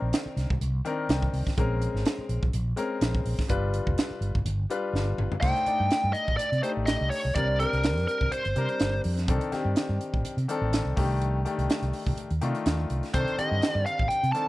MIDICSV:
0, 0, Header, 1, 6, 480
1, 0, Start_track
1, 0, Tempo, 481541
1, 1569, Time_signature, 4, 2, 24, 8
1, 14436, End_track
2, 0, Start_track
2, 0, Title_t, "Lead electric guitar"
2, 0, Program_c, 0, 29
2, 5395, Note_on_c, 0, 79, 83
2, 6111, Note_on_c, 0, 75, 70
2, 6142, Note_off_c, 0, 79, 0
2, 6346, Note_off_c, 0, 75, 0
2, 6350, Note_on_c, 0, 74, 82
2, 6580, Note_off_c, 0, 74, 0
2, 6610, Note_on_c, 0, 72, 73
2, 6674, Note_off_c, 0, 72, 0
2, 6838, Note_on_c, 0, 75, 73
2, 7076, Note_off_c, 0, 75, 0
2, 7080, Note_on_c, 0, 73, 80
2, 7321, Note_off_c, 0, 73, 0
2, 7325, Note_on_c, 0, 74, 82
2, 7549, Note_off_c, 0, 74, 0
2, 7571, Note_on_c, 0, 70, 76
2, 8038, Note_off_c, 0, 70, 0
2, 8050, Note_on_c, 0, 70, 68
2, 8291, Note_on_c, 0, 72, 69
2, 8295, Note_off_c, 0, 70, 0
2, 8969, Note_off_c, 0, 72, 0
2, 13100, Note_on_c, 0, 72, 77
2, 13344, Note_off_c, 0, 72, 0
2, 13344, Note_on_c, 0, 75, 81
2, 13673, Note_off_c, 0, 75, 0
2, 13673, Note_on_c, 0, 74, 81
2, 13786, Note_off_c, 0, 74, 0
2, 13814, Note_on_c, 0, 77, 78
2, 14037, Note_on_c, 0, 79, 99
2, 14038, Note_off_c, 0, 77, 0
2, 14273, Note_off_c, 0, 79, 0
2, 14277, Note_on_c, 0, 81, 93
2, 14436, Note_off_c, 0, 81, 0
2, 14436, End_track
3, 0, Start_track
3, 0, Title_t, "Grand piano"
3, 0, Program_c, 1, 0
3, 0, Note_on_c, 1, 51, 64
3, 0, Note_on_c, 1, 60, 67
3, 0, Note_on_c, 1, 62, 64
3, 0, Note_on_c, 1, 70, 78
3, 468, Note_off_c, 1, 51, 0
3, 470, Note_off_c, 1, 60, 0
3, 473, Note_off_c, 1, 62, 0
3, 476, Note_off_c, 1, 70, 0
3, 845, Note_on_c, 1, 51, 75
3, 852, Note_on_c, 1, 60, 61
3, 856, Note_on_c, 1, 62, 70
3, 865, Note_on_c, 1, 70, 87
3, 1100, Note_on_c, 1, 79, 61
3, 1465, Note_off_c, 1, 51, 0
3, 1469, Note_off_c, 1, 60, 0
3, 1471, Note_off_c, 1, 62, 0
3, 1475, Note_off_c, 1, 70, 0
3, 1541, Note_off_c, 1, 79, 0
3, 1570, Note_on_c, 1, 56, 81
3, 1579, Note_on_c, 1, 60, 67
3, 1585, Note_on_c, 1, 61, 71
3, 1590, Note_on_c, 1, 70, 84
3, 2389, Note_off_c, 1, 56, 0
3, 2393, Note_off_c, 1, 60, 0
3, 2396, Note_off_c, 1, 61, 0
3, 2399, Note_off_c, 1, 70, 0
3, 2754, Note_on_c, 1, 56, 71
3, 2761, Note_on_c, 1, 60, 68
3, 2769, Note_on_c, 1, 61, 65
3, 2773, Note_on_c, 1, 70, 84
3, 3379, Note_off_c, 1, 56, 0
3, 3382, Note_off_c, 1, 60, 0
3, 3386, Note_off_c, 1, 61, 0
3, 3388, Note_off_c, 1, 70, 0
3, 3473, Note_on_c, 1, 55, 69
3, 3480, Note_on_c, 1, 62, 66
3, 3485, Note_on_c, 1, 65, 65
3, 3491, Note_on_c, 1, 71, 79
3, 4299, Note_off_c, 1, 55, 0
3, 4303, Note_off_c, 1, 62, 0
3, 4306, Note_off_c, 1, 65, 0
3, 4308, Note_off_c, 1, 71, 0
3, 4682, Note_on_c, 1, 55, 66
3, 4686, Note_on_c, 1, 62, 63
3, 4691, Note_on_c, 1, 65, 66
3, 4697, Note_on_c, 1, 71, 76
3, 5302, Note_off_c, 1, 55, 0
3, 5305, Note_off_c, 1, 62, 0
3, 5307, Note_off_c, 1, 65, 0
3, 5310, Note_off_c, 1, 71, 0
3, 5400, Note_on_c, 1, 57, 59
3, 5403, Note_on_c, 1, 62, 55
3, 5409, Note_on_c, 1, 63, 51
3, 5420, Note_on_c, 1, 72, 66
3, 5609, Note_off_c, 1, 57, 0
3, 5610, Note_off_c, 1, 62, 0
3, 5613, Note_off_c, 1, 63, 0
3, 5619, Note_off_c, 1, 72, 0
3, 5640, Note_on_c, 1, 57, 53
3, 5647, Note_on_c, 1, 62, 49
3, 5652, Note_on_c, 1, 63, 51
3, 5655, Note_on_c, 1, 74, 65
3, 6463, Note_off_c, 1, 57, 0
3, 6467, Note_off_c, 1, 62, 0
3, 6469, Note_off_c, 1, 63, 0
3, 6471, Note_off_c, 1, 74, 0
3, 6601, Note_on_c, 1, 57, 58
3, 6608, Note_on_c, 1, 62, 54
3, 6614, Note_on_c, 1, 63, 55
3, 6619, Note_on_c, 1, 67, 61
3, 7222, Note_off_c, 1, 57, 0
3, 7226, Note_off_c, 1, 62, 0
3, 7229, Note_off_c, 1, 63, 0
3, 7231, Note_off_c, 1, 67, 0
3, 7327, Note_on_c, 1, 55, 55
3, 7333, Note_on_c, 1, 60, 59
3, 7338, Note_on_c, 1, 62, 61
3, 7346, Note_on_c, 1, 70, 68
3, 7533, Note_off_c, 1, 55, 0
3, 7536, Note_off_c, 1, 60, 0
3, 7538, Note_off_c, 1, 62, 0
3, 7542, Note_off_c, 1, 70, 0
3, 7563, Note_on_c, 1, 55, 57
3, 7573, Note_on_c, 1, 60, 54
3, 7578, Note_on_c, 1, 62, 57
3, 7582, Note_on_c, 1, 70, 62
3, 8386, Note_off_c, 1, 55, 0
3, 8391, Note_off_c, 1, 60, 0
3, 8393, Note_off_c, 1, 62, 0
3, 8395, Note_off_c, 1, 70, 0
3, 8528, Note_on_c, 1, 55, 60
3, 8535, Note_on_c, 1, 60, 53
3, 8540, Note_on_c, 1, 62, 56
3, 8550, Note_on_c, 1, 70, 76
3, 9147, Note_off_c, 1, 55, 0
3, 9150, Note_off_c, 1, 60, 0
3, 9152, Note_off_c, 1, 62, 0
3, 9158, Note_off_c, 1, 70, 0
3, 9252, Note_on_c, 1, 51, 70
3, 9258, Note_on_c, 1, 60, 67
3, 9262, Note_on_c, 1, 62, 67
3, 9266, Note_on_c, 1, 69, 80
3, 9456, Note_off_c, 1, 51, 0
3, 9459, Note_off_c, 1, 60, 0
3, 9461, Note_off_c, 1, 62, 0
3, 9463, Note_off_c, 1, 69, 0
3, 9487, Note_on_c, 1, 51, 69
3, 9489, Note_on_c, 1, 60, 67
3, 9495, Note_on_c, 1, 62, 64
3, 9502, Note_on_c, 1, 67, 80
3, 10309, Note_off_c, 1, 51, 0
3, 10310, Note_off_c, 1, 60, 0
3, 10313, Note_off_c, 1, 62, 0
3, 10316, Note_off_c, 1, 67, 0
3, 10450, Note_on_c, 1, 51, 68
3, 10458, Note_on_c, 1, 60, 66
3, 10463, Note_on_c, 1, 62, 76
3, 10469, Note_on_c, 1, 69, 91
3, 10914, Note_off_c, 1, 51, 0
3, 10924, Note_off_c, 1, 62, 0
3, 10929, Note_on_c, 1, 51, 76
3, 10934, Note_off_c, 1, 60, 0
3, 10935, Note_on_c, 1, 57, 67
3, 10939, Note_on_c, 1, 62, 69
3, 10940, Note_off_c, 1, 69, 0
3, 10946, Note_on_c, 1, 67, 94
3, 11342, Note_off_c, 1, 51, 0
3, 11345, Note_off_c, 1, 57, 0
3, 11347, Note_off_c, 1, 62, 0
3, 11351, Note_off_c, 1, 67, 0
3, 11413, Note_on_c, 1, 51, 70
3, 11419, Note_on_c, 1, 57, 62
3, 11425, Note_on_c, 1, 62, 62
3, 11428, Note_on_c, 1, 67, 78
3, 12233, Note_off_c, 1, 51, 0
3, 12236, Note_off_c, 1, 57, 0
3, 12239, Note_off_c, 1, 62, 0
3, 12241, Note_off_c, 1, 67, 0
3, 12374, Note_on_c, 1, 51, 76
3, 12378, Note_on_c, 1, 57, 67
3, 12386, Note_on_c, 1, 65, 71
3, 12387, Note_on_c, 1, 62, 62
3, 12993, Note_off_c, 1, 51, 0
3, 12995, Note_off_c, 1, 57, 0
3, 12999, Note_off_c, 1, 62, 0
3, 12999, Note_off_c, 1, 65, 0
3, 13092, Note_on_c, 1, 51, 63
3, 13097, Note_on_c, 1, 60, 59
3, 13101, Note_on_c, 1, 62, 58
3, 13106, Note_on_c, 1, 69, 71
3, 13299, Note_off_c, 1, 51, 0
3, 13302, Note_off_c, 1, 60, 0
3, 13304, Note_off_c, 1, 62, 0
3, 13306, Note_off_c, 1, 69, 0
3, 13337, Note_on_c, 1, 51, 55
3, 13342, Note_on_c, 1, 60, 53
3, 13344, Note_on_c, 1, 50, 50
3, 13353, Note_on_c, 1, 67, 63
3, 14157, Note_off_c, 1, 51, 0
3, 14160, Note_off_c, 1, 60, 0
3, 14161, Note_off_c, 1, 50, 0
3, 14166, Note_off_c, 1, 67, 0
3, 14293, Note_on_c, 1, 51, 59
3, 14300, Note_on_c, 1, 60, 59
3, 14306, Note_on_c, 1, 62, 53
3, 14312, Note_on_c, 1, 69, 73
3, 14436, Note_off_c, 1, 51, 0
3, 14436, Note_off_c, 1, 60, 0
3, 14436, Note_off_c, 1, 62, 0
3, 14436, Note_off_c, 1, 69, 0
3, 14436, End_track
4, 0, Start_track
4, 0, Title_t, "Fretless electric bass"
4, 0, Program_c, 2, 35
4, 20, Note_on_c, 2, 34, 82
4, 106, Note_off_c, 2, 34, 0
4, 365, Note_on_c, 2, 36, 73
4, 468, Note_off_c, 2, 36, 0
4, 503, Note_on_c, 2, 36, 82
4, 587, Note_off_c, 2, 36, 0
4, 609, Note_on_c, 2, 36, 83
4, 796, Note_off_c, 2, 36, 0
4, 1089, Note_on_c, 2, 36, 92
4, 1275, Note_off_c, 2, 36, 0
4, 1329, Note_on_c, 2, 36, 78
4, 1430, Note_off_c, 2, 36, 0
4, 1572, Note_on_c, 2, 34, 88
4, 1858, Note_off_c, 2, 34, 0
4, 1935, Note_on_c, 2, 32, 86
4, 2022, Note_off_c, 2, 32, 0
4, 2284, Note_on_c, 2, 34, 69
4, 2386, Note_off_c, 2, 34, 0
4, 2419, Note_on_c, 2, 34, 76
4, 2504, Note_off_c, 2, 34, 0
4, 2530, Note_on_c, 2, 34, 93
4, 2715, Note_off_c, 2, 34, 0
4, 3005, Note_on_c, 2, 34, 89
4, 3192, Note_off_c, 2, 34, 0
4, 3244, Note_on_c, 2, 34, 71
4, 3346, Note_off_c, 2, 34, 0
4, 3488, Note_on_c, 2, 31, 80
4, 3774, Note_off_c, 2, 31, 0
4, 3856, Note_on_c, 2, 29, 84
4, 3941, Note_off_c, 2, 29, 0
4, 4194, Note_on_c, 2, 31, 72
4, 4300, Note_off_c, 2, 31, 0
4, 4336, Note_on_c, 2, 31, 77
4, 4422, Note_off_c, 2, 31, 0
4, 4438, Note_on_c, 2, 31, 97
4, 4627, Note_off_c, 2, 31, 0
4, 4918, Note_on_c, 2, 31, 88
4, 5107, Note_off_c, 2, 31, 0
4, 5162, Note_on_c, 2, 31, 75
4, 5264, Note_off_c, 2, 31, 0
4, 5411, Note_on_c, 2, 36, 74
4, 5510, Note_off_c, 2, 36, 0
4, 5781, Note_on_c, 2, 43, 70
4, 5864, Note_off_c, 2, 43, 0
4, 6019, Note_on_c, 2, 43, 80
4, 6103, Note_off_c, 2, 43, 0
4, 6259, Note_on_c, 2, 33, 73
4, 6343, Note_off_c, 2, 33, 0
4, 6500, Note_on_c, 2, 48, 75
4, 6584, Note_off_c, 2, 48, 0
4, 6747, Note_on_c, 2, 33, 75
4, 6929, Note_off_c, 2, 33, 0
4, 6987, Note_on_c, 2, 36, 76
4, 7068, Note_off_c, 2, 36, 0
4, 7225, Note_on_c, 2, 36, 74
4, 7307, Note_off_c, 2, 36, 0
4, 7330, Note_on_c, 2, 36, 78
4, 7616, Note_off_c, 2, 36, 0
4, 7706, Note_on_c, 2, 36, 75
4, 7944, Note_off_c, 2, 36, 0
4, 7944, Note_on_c, 2, 41, 80
4, 8027, Note_off_c, 2, 41, 0
4, 8186, Note_on_c, 2, 36, 88
4, 8268, Note_off_c, 2, 36, 0
4, 8429, Note_on_c, 2, 31, 83
4, 8510, Note_off_c, 2, 31, 0
4, 8536, Note_on_c, 2, 48, 79
4, 8633, Note_off_c, 2, 48, 0
4, 8778, Note_on_c, 2, 31, 81
4, 8961, Note_off_c, 2, 31, 0
4, 9022, Note_on_c, 2, 41, 92
4, 9255, Note_on_c, 2, 36, 79
4, 9270, Note_off_c, 2, 41, 0
4, 9353, Note_off_c, 2, 36, 0
4, 9619, Note_on_c, 2, 43, 71
4, 9704, Note_off_c, 2, 43, 0
4, 9861, Note_on_c, 2, 43, 81
4, 9946, Note_off_c, 2, 43, 0
4, 10103, Note_on_c, 2, 33, 75
4, 10187, Note_off_c, 2, 33, 0
4, 10337, Note_on_c, 2, 48, 75
4, 10423, Note_off_c, 2, 48, 0
4, 10581, Note_on_c, 2, 33, 85
4, 10767, Note_off_c, 2, 33, 0
4, 10818, Note_on_c, 2, 36, 75
4, 10904, Note_off_c, 2, 36, 0
4, 10938, Note_on_c, 2, 36, 87
4, 11409, Note_off_c, 2, 36, 0
4, 11546, Note_on_c, 2, 36, 76
4, 11629, Note_off_c, 2, 36, 0
4, 11784, Note_on_c, 2, 36, 75
4, 11868, Note_off_c, 2, 36, 0
4, 12028, Note_on_c, 2, 36, 89
4, 12111, Note_off_c, 2, 36, 0
4, 12268, Note_on_c, 2, 39, 79
4, 12351, Note_off_c, 2, 39, 0
4, 12383, Note_on_c, 2, 48, 67
4, 12479, Note_off_c, 2, 48, 0
4, 12620, Note_on_c, 2, 39, 82
4, 12804, Note_off_c, 2, 39, 0
4, 12861, Note_on_c, 2, 36, 77
4, 12959, Note_off_c, 2, 36, 0
4, 13099, Note_on_c, 2, 36, 83
4, 13198, Note_off_c, 2, 36, 0
4, 13471, Note_on_c, 2, 43, 68
4, 13554, Note_off_c, 2, 43, 0
4, 13707, Note_on_c, 2, 43, 83
4, 13792, Note_off_c, 2, 43, 0
4, 13951, Note_on_c, 2, 33, 79
4, 14034, Note_off_c, 2, 33, 0
4, 14188, Note_on_c, 2, 48, 75
4, 14273, Note_off_c, 2, 48, 0
4, 14436, End_track
5, 0, Start_track
5, 0, Title_t, "Muted fretless electric bass strokes"
5, 256, Note_on_c, 9, 29, 39
5, 356, Note_off_c, 9, 29, 0
5, 1461, Note_on_c, 9, 29, 35
5, 1561, Note_off_c, 9, 29, 0
5, 2178, Note_on_c, 9, 29, 38
5, 2277, Note_off_c, 9, 29, 0
5, 4091, Note_on_c, 9, 29, 36
5, 4191, Note_off_c, 9, 29, 0
5, 5645, Note_on_c, 9, 29, 35
5, 5745, Note_off_c, 9, 29, 0
5, 9488, Note_on_c, 9, 29, 34
5, 9588, Note_off_c, 9, 29, 0
5, 10218, Note_on_c, 9, 29, 35
5, 10317, Note_off_c, 9, 29, 0
5, 12135, Note_on_c, 9, 29, 33
5, 12235, Note_off_c, 9, 29, 0
5, 13341, Note_on_c, 9, 29, 36
5, 13441, Note_off_c, 9, 29, 0
5, 14056, Note_on_c, 9, 29, 32
5, 14156, Note_off_c, 9, 29, 0
5, 14436, End_track
6, 0, Start_track
6, 0, Title_t, "Drums"
6, 128, Note_on_c, 9, 42, 78
6, 138, Note_on_c, 9, 38, 93
6, 228, Note_off_c, 9, 42, 0
6, 238, Note_off_c, 9, 38, 0
6, 371, Note_on_c, 9, 42, 49
6, 381, Note_on_c, 9, 38, 31
6, 471, Note_off_c, 9, 42, 0
6, 481, Note_off_c, 9, 38, 0
6, 502, Note_on_c, 9, 36, 74
6, 601, Note_off_c, 9, 36, 0
6, 612, Note_on_c, 9, 42, 74
6, 711, Note_off_c, 9, 42, 0
6, 852, Note_on_c, 9, 42, 52
6, 952, Note_off_c, 9, 42, 0
6, 1089, Note_on_c, 9, 42, 66
6, 1099, Note_on_c, 9, 38, 102
6, 1189, Note_off_c, 9, 42, 0
6, 1199, Note_off_c, 9, 38, 0
6, 1221, Note_on_c, 9, 36, 82
6, 1321, Note_off_c, 9, 36, 0
6, 1332, Note_on_c, 9, 46, 63
6, 1432, Note_off_c, 9, 46, 0
6, 1462, Note_on_c, 9, 36, 77
6, 1474, Note_on_c, 9, 38, 33
6, 1562, Note_off_c, 9, 36, 0
6, 1571, Note_on_c, 9, 42, 72
6, 1572, Note_on_c, 9, 36, 100
6, 1574, Note_off_c, 9, 38, 0
6, 1671, Note_off_c, 9, 36, 0
6, 1671, Note_off_c, 9, 42, 0
6, 1811, Note_on_c, 9, 42, 56
6, 1911, Note_off_c, 9, 42, 0
6, 1952, Note_on_c, 9, 38, 32
6, 2049, Note_on_c, 9, 42, 78
6, 2052, Note_off_c, 9, 38, 0
6, 2059, Note_on_c, 9, 38, 100
6, 2148, Note_off_c, 9, 42, 0
6, 2158, Note_off_c, 9, 38, 0
6, 2286, Note_on_c, 9, 42, 55
6, 2386, Note_off_c, 9, 42, 0
6, 2419, Note_on_c, 9, 36, 72
6, 2518, Note_off_c, 9, 36, 0
6, 2526, Note_on_c, 9, 42, 76
6, 2626, Note_off_c, 9, 42, 0
6, 2762, Note_on_c, 9, 42, 58
6, 2862, Note_off_c, 9, 42, 0
6, 3004, Note_on_c, 9, 42, 78
6, 3014, Note_on_c, 9, 38, 91
6, 3103, Note_off_c, 9, 42, 0
6, 3113, Note_off_c, 9, 38, 0
6, 3136, Note_on_c, 9, 36, 80
6, 3235, Note_off_c, 9, 36, 0
6, 3245, Note_on_c, 9, 46, 67
6, 3345, Note_off_c, 9, 46, 0
6, 3376, Note_on_c, 9, 36, 82
6, 3385, Note_on_c, 9, 38, 32
6, 3476, Note_off_c, 9, 36, 0
6, 3482, Note_on_c, 9, 42, 84
6, 3485, Note_off_c, 9, 38, 0
6, 3486, Note_on_c, 9, 36, 97
6, 3582, Note_off_c, 9, 42, 0
6, 3586, Note_off_c, 9, 36, 0
6, 3725, Note_on_c, 9, 42, 57
6, 3825, Note_off_c, 9, 42, 0
6, 3856, Note_on_c, 9, 36, 62
6, 3956, Note_off_c, 9, 36, 0
6, 3965, Note_on_c, 9, 42, 81
6, 3975, Note_on_c, 9, 38, 91
6, 4065, Note_off_c, 9, 42, 0
6, 4075, Note_off_c, 9, 38, 0
6, 4205, Note_on_c, 9, 42, 51
6, 4304, Note_off_c, 9, 42, 0
6, 4336, Note_on_c, 9, 36, 68
6, 4436, Note_off_c, 9, 36, 0
6, 4444, Note_on_c, 9, 42, 76
6, 4544, Note_off_c, 9, 42, 0
6, 4689, Note_on_c, 9, 42, 56
6, 4789, Note_off_c, 9, 42, 0
6, 4938, Note_on_c, 9, 38, 51
6, 5037, Note_off_c, 9, 38, 0
6, 5168, Note_on_c, 9, 45, 70
6, 5267, Note_off_c, 9, 45, 0
6, 5300, Note_on_c, 9, 43, 78
6, 5399, Note_off_c, 9, 43, 0
6, 5405, Note_on_c, 9, 49, 92
6, 5408, Note_on_c, 9, 36, 96
6, 5505, Note_off_c, 9, 49, 0
6, 5508, Note_off_c, 9, 36, 0
6, 5543, Note_on_c, 9, 42, 32
6, 5643, Note_off_c, 9, 42, 0
6, 5647, Note_on_c, 9, 42, 52
6, 5746, Note_off_c, 9, 42, 0
6, 5887, Note_on_c, 9, 42, 72
6, 5897, Note_on_c, 9, 38, 86
6, 5987, Note_off_c, 9, 42, 0
6, 5997, Note_off_c, 9, 38, 0
6, 6125, Note_on_c, 9, 42, 54
6, 6225, Note_off_c, 9, 42, 0
6, 6260, Note_on_c, 9, 36, 58
6, 6359, Note_off_c, 9, 36, 0
6, 6372, Note_on_c, 9, 42, 75
6, 6472, Note_off_c, 9, 42, 0
6, 6507, Note_on_c, 9, 42, 39
6, 6606, Note_off_c, 9, 42, 0
6, 6614, Note_on_c, 9, 42, 64
6, 6714, Note_off_c, 9, 42, 0
6, 6849, Note_on_c, 9, 42, 76
6, 6859, Note_on_c, 9, 38, 89
6, 6948, Note_off_c, 9, 42, 0
6, 6958, Note_off_c, 9, 38, 0
6, 7093, Note_on_c, 9, 46, 68
6, 7193, Note_off_c, 9, 46, 0
6, 7330, Note_on_c, 9, 42, 79
6, 7332, Note_on_c, 9, 36, 106
6, 7430, Note_off_c, 9, 42, 0
6, 7432, Note_off_c, 9, 36, 0
6, 7575, Note_on_c, 9, 42, 57
6, 7674, Note_off_c, 9, 42, 0
6, 7707, Note_on_c, 9, 42, 34
6, 7807, Note_off_c, 9, 42, 0
6, 7810, Note_on_c, 9, 42, 70
6, 7820, Note_on_c, 9, 38, 97
6, 7910, Note_off_c, 9, 42, 0
6, 7920, Note_off_c, 9, 38, 0
6, 7949, Note_on_c, 9, 42, 35
6, 7959, Note_on_c, 9, 38, 34
6, 8048, Note_off_c, 9, 42, 0
6, 8058, Note_off_c, 9, 38, 0
6, 8059, Note_on_c, 9, 42, 52
6, 8158, Note_off_c, 9, 42, 0
6, 8183, Note_on_c, 9, 36, 64
6, 8283, Note_off_c, 9, 36, 0
6, 8293, Note_on_c, 9, 42, 75
6, 8393, Note_off_c, 9, 42, 0
6, 8424, Note_on_c, 9, 42, 35
6, 8524, Note_off_c, 9, 42, 0
6, 8532, Note_on_c, 9, 42, 51
6, 8631, Note_off_c, 9, 42, 0
6, 8660, Note_on_c, 9, 42, 34
6, 8759, Note_off_c, 9, 42, 0
6, 8767, Note_on_c, 9, 42, 65
6, 8777, Note_on_c, 9, 38, 87
6, 8867, Note_off_c, 9, 42, 0
6, 8877, Note_off_c, 9, 38, 0
6, 9011, Note_on_c, 9, 46, 68
6, 9110, Note_off_c, 9, 46, 0
6, 9142, Note_on_c, 9, 42, 34
6, 9152, Note_on_c, 9, 38, 34
6, 9242, Note_off_c, 9, 42, 0
6, 9251, Note_on_c, 9, 42, 72
6, 9252, Note_off_c, 9, 38, 0
6, 9253, Note_on_c, 9, 36, 103
6, 9351, Note_off_c, 9, 42, 0
6, 9352, Note_off_c, 9, 36, 0
6, 9381, Note_on_c, 9, 42, 37
6, 9480, Note_off_c, 9, 42, 0
6, 9492, Note_on_c, 9, 42, 54
6, 9502, Note_on_c, 9, 38, 30
6, 9592, Note_off_c, 9, 42, 0
6, 9602, Note_off_c, 9, 38, 0
6, 9728, Note_on_c, 9, 42, 72
6, 9738, Note_on_c, 9, 38, 89
6, 9828, Note_off_c, 9, 42, 0
6, 9838, Note_off_c, 9, 38, 0
6, 9976, Note_on_c, 9, 42, 52
6, 10076, Note_off_c, 9, 42, 0
6, 10104, Note_on_c, 9, 36, 67
6, 10204, Note_off_c, 9, 36, 0
6, 10215, Note_on_c, 9, 42, 77
6, 10315, Note_off_c, 9, 42, 0
6, 10346, Note_on_c, 9, 42, 38
6, 10446, Note_off_c, 9, 42, 0
6, 10455, Note_on_c, 9, 42, 62
6, 10555, Note_off_c, 9, 42, 0
6, 10695, Note_on_c, 9, 42, 77
6, 10705, Note_on_c, 9, 38, 88
6, 10795, Note_off_c, 9, 42, 0
6, 10805, Note_off_c, 9, 38, 0
6, 10934, Note_on_c, 9, 46, 67
6, 10936, Note_on_c, 9, 36, 90
6, 11034, Note_off_c, 9, 46, 0
6, 11036, Note_off_c, 9, 36, 0
6, 11180, Note_on_c, 9, 42, 80
6, 11280, Note_off_c, 9, 42, 0
6, 11420, Note_on_c, 9, 42, 60
6, 11519, Note_off_c, 9, 42, 0
6, 11551, Note_on_c, 9, 42, 33
6, 11651, Note_off_c, 9, 42, 0
6, 11659, Note_on_c, 9, 42, 68
6, 11669, Note_on_c, 9, 38, 89
6, 11759, Note_off_c, 9, 42, 0
6, 11769, Note_off_c, 9, 38, 0
6, 11788, Note_on_c, 9, 42, 38
6, 11887, Note_off_c, 9, 42, 0
6, 11895, Note_on_c, 9, 46, 63
6, 11995, Note_off_c, 9, 46, 0
6, 12027, Note_on_c, 9, 36, 69
6, 12126, Note_off_c, 9, 36, 0
6, 12136, Note_on_c, 9, 42, 77
6, 12236, Note_off_c, 9, 42, 0
6, 12265, Note_on_c, 9, 42, 34
6, 12365, Note_off_c, 9, 42, 0
6, 12376, Note_on_c, 9, 42, 54
6, 12475, Note_off_c, 9, 42, 0
6, 12507, Note_on_c, 9, 42, 34
6, 12607, Note_off_c, 9, 42, 0
6, 12617, Note_on_c, 9, 42, 65
6, 12627, Note_on_c, 9, 38, 91
6, 12717, Note_off_c, 9, 42, 0
6, 12727, Note_off_c, 9, 38, 0
6, 12857, Note_on_c, 9, 42, 51
6, 12957, Note_off_c, 9, 42, 0
6, 12989, Note_on_c, 9, 42, 32
6, 12998, Note_on_c, 9, 38, 33
6, 13088, Note_off_c, 9, 42, 0
6, 13095, Note_on_c, 9, 42, 65
6, 13098, Note_off_c, 9, 38, 0
6, 13099, Note_on_c, 9, 36, 100
6, 13195, Note_off_c, 9, 42, 0
6, 13199, Note_off_c, 9, 36, 0
6, 13233, Note_on_c, 9, 42, 33
6, 13333, Note_off_c, 9, 42, 0
6, 13343, Note_on_c, 9, 42, 57
6, 13443, Note_off_c, 9, 42, 0
6, 13580, Note_on_c, 9, 42, 69
6, 13589, Note_on_c, 9, 38, 97
6, 13679, Note_off_c, 9, 42, 0
6, 13689, Note_off_c, 9, 38, 0
6, 13820, Note_on_c, 9, 42, 53
6, 13920, Note_off_c, 9, 42, 0
6, 13949, Note_on_c, 9, 36, 68
6, 14048, Note_off_c, 9, 36, 0
6, 14060, Note_on_c, 9, 42, 75
6, 14160, Note_off_c, 9, 42, 0
6, 14191, Note_on_c, 9, 42, 40
6, 14291, Note_off_c, 9, 42, 0
6, 14301, Note_on_c, 9, 42, 59
6, 14401, Note_off_c, 9, 42, 0
6, 14436, End_track
0, 0, End_of_file